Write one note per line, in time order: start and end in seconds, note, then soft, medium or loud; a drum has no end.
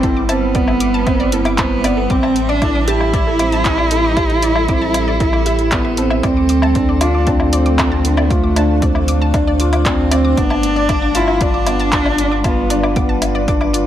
0.00 2.08 G1 medium
0.00 6.24 G3 medium
0.00 0.55 B3 medium
0.00 0.29 C4 loud
0.00 0.31 C4 loud
0.00 0.03 E4 loud
0.00 0.28 E4 medium
0.00 0.06 A4 medium
0.00 3.75 B4 medium
0.00 6.24 E5 medium
0.00 kick medium
0.00 closed hi-hat soft
0.17 0.21 D6 medium
0.29 1.58 B3 loud
0.29 0.44 C4 loud
0.29 0.36 A5 loud
0.29 closed hi-hat medium
0.29 low woodblock medium
0.55 0.70 B3 medium
0.55 0.60 D5 loud
0.55 kick loud
0.55 closed hi-hat soft
0.68 0.71 A4 medium
0.68 low woodblock medium
0.80 0.85 D6 medium
0.80 closed hi-hat medium
0.94 1.01 A5 loud
1.07 1.21 C4 loud
1.07 kick loud
1.07 closed hi-hat soft
1.07 low woodblock medium
1.20 1.24 D5 loud
1.32 1.47 E4 medium
1.32 1.36 A4 medium
1.32 closed hi-hat medium
1.45 1.50 D6 medium
1.45 closed hi-hat soft
1.45 low woodblock medium
1.58 2.12 B3 loud
1.58 1.83 C4 medium
1.58 1.66 A5 loud
1.58 kick loud
1.58 clap medium
1.58 closed hi-hat soft
1.84 2.09 B3 loud
1.84 1.89 D5 loud
1.84 closed hi-hat medium
1.84 low woodblock medium
1.97 2.00 A4 medium
2.10 6.21 A1 medium
2.10 2.51 C4 loud
2.10 2.35 C4 medium
2.10 2.15 D6 medium
2.10 kick loud
2.10 closed hi-hat soft
2.23 2.30 A5 medium
2.23 low woodblock medium
2.36 7.89 A4 medium
2.36 closed hi-hat medium
2.49 2.89 D4 loud
2.49 2.54 D5 loud
2.62 2.86 E4 medium
2.62 2.65 A4 medium
2.62 kick medium
2.62 closed hi-hat soft
2.62 low woodblock medium
2.75 2.80 D6 medium
2.88 5.74 E4 loud
2.88 3.12 G4 loud
2.88 2.95 A5 loud
2.88 closed hi-hat medium
3.01 low woodblock medium
3.13 3.28 E4 loud
3.13 3.19 D5 loud
3.13 kick loud
3.13 closed hi-hat soft
3.27 3.30 A4 medium
3.39 3.64 C4 medium
3.39 3.44 D6 medium
3.39 closed hi-hat medium
3.39 low woodblock medium
3.52 3.60 A5 loud
3.52 closed hi-hat soft
3.65 kick medium
3.65 clap medium
3.65 closed hi-hat soft
3.78 3.83 D5 medium
3.78 low woodblock medium
3.91 4.16 E4 medium
3.91 3.94 A4 medium
3.91 closed hi-hat medium
4.04 4.09 D6 medium
4.17 4.41 G4 medium
4.17 4.24 A5 loud
4.17 kick loud
4.17 closed hi-hat soft
4.17 low woodblock medium
4.30 closed hi-hat soft
4.42 4.57 E4 loud
4.42 4.48 D5 loud
4.42 closed hi-hat medium
4.56 4.59 A4 medium
4.56 low woodblock medium
4.68 4.83 C4 medium
4.68 4.74 D6 medium
4.68 kick loud
4.68 closed hi-hat soft
4.81 4.89 A5 loud
4.94 closed hi-hat medium
4.94 low woodblock medium
5.08 5.12 D5 medium
5.20 5.35 E4 loud
5.20 5.23 A4 medium
5.20 kick loud
5.20 closed hi-hat soft
5.33 5.38 D6 medium
5.33 low woodblock medium
5.46 5.61 G4 medium
5.46 5.53 E5 loud
5.46 closed hi-hat medium
5.59 closed hi-hat soft
5.72 6.23 B3 loud
5.72 5.97 E4 medium
5.72 5.77 D5 loud
5.72 kick loud
5.72 clap medium
5.72 closed hi-hat soft
5.72 low woodblock medium
5.85 5.92 E5 medium
5.97 6.22 C4 loud
5.97 6.03 A4 medium
5.97 closed hi-hat medium
6.10 6.18 E5 loud
6.10 low woodblock medium
6.23 10.35 D2 medium
6.23 10.38 A3 medium
6.23 6.48 C4 medium
6.23 7.03 C4 loud
6.23 6.28 D5 loud
6.23 kick loud
6.23 closed hi-hat soft
6.23 low woodblock medium
6.37 13.87 D4 medium
6.37 6.44 D6 medium
6.49 6.55 D6 medium
6.49 closed hi-hat medium
6.62 6.70 A5 loud
6.62 low woodblock medium
6.75 7.00 D4 medium
6.75 kick loud
6.75 closed hi-hat soft
6.89 6.93 D5 medium
7.01 7.29 D4 loud
7.01 7.26 F4 loud
7.01 7.09 D6 medium
7.01 closed hi-hat medium
7.01 low woodblock medium
7.15 7.19 D6 medium
7.27 8.32 C4 loud
7.27 7.42 D4 loud
7.27 7.34 A5 loud
7.27 kick loud
7.27 closed hi-hat soft
7.40 low woodblock medium
7.47 10.38 C5 medium
7.53 7.78 C4 medium
7.53 7.58 D5 loud
7.53 closed hi-hat medium
7.66 7.73 D6 medium
7.66 closed hi-hat soft
7.79 7.84 D6 medium
7.79 kick loud
7.79 clap medium
7.79 closed hi-hat soft
7.79 low woodblock medium
7.90 13.87 F5 medium
7.90 7.99 A5 loud
8.05 8.29 D4 medium
8.05 closed hi-hat medium
8.17 8.22 D5 loud
8.17 low woodblock medium
8.31 8.82 A3 medium
8.31 8.55 F4 medium
8.31 8.38 D6 medium
8.31 kick loud
8.31 closed hi-hat soft
8.44 8.48 D6 medium
8.56 8.71 D4 loud
8.56 8.64 A5 loud
8.56 closed hi-hat medium
8.56 low woodblock medium
8.82 8.97 C4 medium
8.82 8.87 D5 loud
8.82 kick loud
8.82 closed hi-hat soft
8.95 9.03 D6 medium
8.95 low woodblock medium
9.08 9.13 D6 medium
9.08 closed hi-hat medium
9.22 9.29 A5 loud
9.34 9.49 D4 loud
9.34 kick loud
9.34 closed hi-hat soft
9.34 low woodblock medium
9.47 9.52 D5 loud
9.60 9.75 F4 medium
9.60 9.67 D6 medium
9.60 closed hi-hat medium
9.73 9.78 D6 medium
9.73 closed hi-hat soft
9.73 low woodblock medium
9.86 10.39 C4 loud
9.86 10.10 D4 medium
9.86 9.93 A5 medium
9.86 kick loud
9.86 clap medium
9.86 closed hi-hat soft
10.12 10.36 C4 loud
10.12 10.16 D5 loud
10.12 closed hi-hat medium
10.12 low woodblock medium
10.25 10.32 D6 medium
10.37 13.87 G1 medium
10.37 13.87 G3 medium
10.37 10.62 B3 medium
10.37 11.17 D4 loud
10.37 10.42 D6 medium
10.37 kick loud
10.37 closed hi-hat soft
10.50 10.58 A5 loud
10.50 low woodblock medium
10.63 closed hi-hat medium
10.76 10.81 D5 loud
10.89 11.14 D4 medium
10.89 10.96 D6 medium
10.89 kick loud
10.89 closed hi-hat soft
10.89 low woodblock medium
11.02 11.07 D6 medium
11.15 11.43 E4 loud
11.15 11.40 F4 loud
11.15 11.22 A5 loud
11.15 closed hi-hat medium
11.28 low woodblock medium
11.41 11.56 D4 loud
11.41 12.44 D4 loud
11.41 11.46 D5 loud
11.41 kick loud
11.41 closed hi-hat soft
11.54 11.61 D6 medium
11.59 13.87 B4 medium
11.67 11.91 B3 medium
11.67 11.72 D6 medium
11.67 closed hi-hat medium
11.67 low woodblock medium
11.80 11.87 A5 loud
11.80 closed hi-hat soft
11.92 kick loud
11.92 clap medium
11.92 closed hi-hat soft
12.05 12.10 D5 loud
12.05 low woodblock medium
12.18 12.43 D4 medium
12.18 12.26 D6 medium
12.18 closed hi-hat medium
12.32 12.36 D6 medium
12.44 12.93 B3 medium
12.44 12.69 F4 medium
12.44 12.52 A5 loud
12.44 kick loud
12.44 closed hi-hat soft
12.44 low woodblock medium
12.70 12.85 D4 loud
12.70 12.75 D5 loud
12.70 closed hi-hat medium
12.83 12.91 D6 medium
12.83 low woodblock medium
12.96 13.11 B3 medium
12.96 13.01 D6 medium
12.96 kick loud
12.96 closed hi-hat soft
13.09 13.16 A5 medium
13.22 closed hi-hat medium
13.22 low woodblock medium
13.35 13.40 D5 loud
13.48 13.63 D4 loud
13.48 13.55 D6 medium
13.48 kick loud
13.48 closed hi-hat soft
13.61 13.66 D6 medium
13.61 low woodblock medium
13.73 13.87 F4 medium
13.73 13.78 D5 medium
13.73 closed hi-hat medium